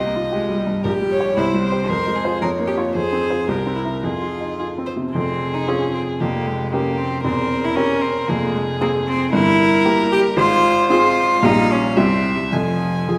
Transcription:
0.00 0.81 C2 medium
0.00 0.25 G4 soft
0.00 0.83 D#5 medium
0.06 0.14 A#3 medium
0.15 0.33 F4 soft
0.32 0.60 G#3 medium
0.32 0.60 G4 soft
0.50 0.78 G3 soft
0.59 0.84 G3 medium
0.67 0.84 G2 soft
0.84 1.35 A#1 medium
0.84 1.36 G4 medium
0.84 0.92 A#4 medium
1.01 1.30 G3 soft
1.11 1.39 C#5 medium
1.20 1.35 G4 soft
1.20 1.36 C#5 soft
1.36 1.88 C2 medium
1.36 1.62 E4 medium
1.36 1.91 C5 medium
1.54 1.82 G3 soft
1.63 1.89 C4 medium
1.72 1.88 G4 soft
1.72 1.88 C5 soft
1.88 2.40 F2 medium
1.88 2.17 A#4 medium
1.88 2.41 C5 medium
2.06 2.35 G#3 soft
2.15 2.44 G#4 medium
2.24 2.40 F4 soft
2.24 2.40 C5 soft
2.42 2.93 F2 medium
2.42 2.50 A#4 medium
2.42 2.95 C#5 medium
2.59 2.88 A#3 soft
2.67 2.75 G4 medium
2.78 2.93 F4 soft
2.78 2.93 C#5 soft
2.95 3.47 F2 soft
2.95 3.50 G#4 medium
2.95 3.48 C5 medium
3.13 3.41 C4 soft
3.30 3.46 F4 soft
3.30 3.47 C5 soft
3.48 4.02 C2 medium
3.48 3.74 G4 medium
3.48 4.06 A#4 medium
3.66 3.96 C4 soft
3.75 3.83 E4 medium
3.85 4.02 E4 soft
3.85 4.02 A#4 soft
4.03 5.11 F2 soft
4.03 4.85 F4 medium
4.03 4.54 G#4 medium
4.22 4.52 F4 soft
4.41 4.59 D#4 soft
4.59 4.89 F4 soft
4.59 4.67 G#4 soft
4.78 5.07 C4 soft
4.86 4.94 C5 medium
4.96 5.14 C3 soft
5.14 6.17 F1 soft
5.14 6.17 F2 medium
5.14 5.56 C4 medium
5.14 6.21 G#4 medium
5.54 5.69 D#4 medium
5.68 6.17 C4 soft
5.68 5.93 C#4 medium
5.68 6.17 F4 soft
5.68 6.17 G#4 soft
5.94 6.02 C4 medium
6.20 7.22 F1 medium
6.20 7.22 F2 medium
6.20 6.48 A#3 medium
6.20 6.71 G4 medium
6.47 6.74 G#3 medium
6.72 6.99 A#3 medium
6.72 7.21 C#4 soft
6.72 7.23 G4 medium
6.72 7.21 G4 soft
6.72 7.21 A#4 soft
6.98 7.23 C4 medium
7.24 8.26 E1 medium
7.24 8.26 E2 medium
7.24 7.66 C4 medium
7.24 8.31 A#4 medium
7.64 7.77 E4 medium
7.75 8.25 C4 soft
7.75 8.03 C#4 loud
7.75 8.25 G4 soft
7.75 8.25 A#4 medium
8.02 8.29 C4 medium
8.28 9.30 F1 medium
8.28 9.30 F2 medium
8.28 8.54 A#3 medium
8.28 9.33 G#4 medium
8.54 8.62 G#3 medium
8.81 8.89 A#3 medium
8.81 9.29 C4 soft
8.81 9.29 G#4 medium
9.08 9.32 C4 loud
9.32 10.34 G1 medium
9.32 10.34 G2 medium
9.32 10.09 E4 loud
9.32 10.38 A#4 medium
9.85 10.33 A#3 medium
9.85 10.34 G4 medium
9.85 10.34 A#4 medium
10.12 10.20 G4 loud
10.37 11.40 G#1 medium
10.37 11.40 G#2 medium
10.37 10.89 F4 loud
10.37 11.42 C5 medium
10.90 11.39 C4 medium
10.90 11.39 F4 medium
10.90 11.46 F4 loud
10.90 11.40 G#4 medium
11.42 11.95 A#1 medium
11.42 11.95 A#2 medium
11.42 11.93 G3 medium
11.42 11.73 D#4 loud
11.42 11.93 F4 medium
11.42 11.94 G4 medium
11.42 11.98 F5 medium
11.71 12.00 C#4 medium
11.97 12.51 C2 medium
11.97 12.51 C3 medium
11.97 12.48 G3 soft
11.97 12.35 C4 medium
11.97 12.49 E4 medium
11.97 12.49 G4 medium
11.97 12.54 E5 medium
12.36 12.43 G3 medium
12.52 13.18 F1 medium
12.52 13.18 F2 medium
12.52 13.18 F3 medium
12.52 13.18 G#5 medium
13.08 13.18 F3 soft
13.08 13.18 F4 soft
13.08 13.18 G#4 soft

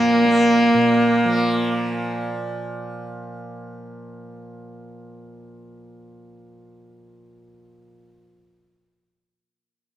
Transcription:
0.00 0.74 A#2 medium
0.00 1.24 F3 medium
0.00 0.25 A#3 medium
0.00 2.24 A#3 loud
0.25 6.14 A#3 medium
0.74 7.89 A#2 medium
1.25 8.25 F3 medium

